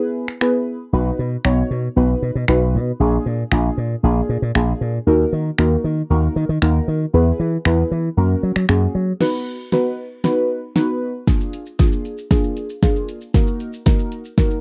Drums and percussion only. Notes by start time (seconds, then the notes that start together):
0.28 finger snap
0.41 finger snap
1.45 finger snap
2.48 finger snap
3.52 finger snap
4.55 finger snap
5.58 finger snap
6.62 finger snap
7.65 finger snap
8.56 finger snap
8.69 finger snap
9.21 snare, crash
9.72 snare
10.24 snare
10.76 snare
11.27 kick, snare, closed hi-hat, shaker
11.41 shaker
11.53 closed hi-hat, shaker
11.66 shaker
11.79 kick, snare, closed hi-hat, shaker
11.92 shaker
12.05 closed hi-hat, shaker
12.18 shaker
12.31 kick, snare, closed hi-hat, shaker
12.44 shaker
12.57 closed hi-hat, shaker
12.70 shaker
12.83 kick, snare, closed hi-hat, shaker
12.96 shaker
13.09 closed hi-hat, shaker
13.21 shaker
13.34 kick, snare, closed hi-hat, shaker
13.47 shaker
13.60 closed hi-hat, shaker
13.73 shaker
13.86 kick, snare, closed hi-hat, shaker
13.99 shaker
14.12 closed hi-hat, shaker
14.25 shaker
14.38 kick, snare, closed hi-hat, shaker
14.51 shaker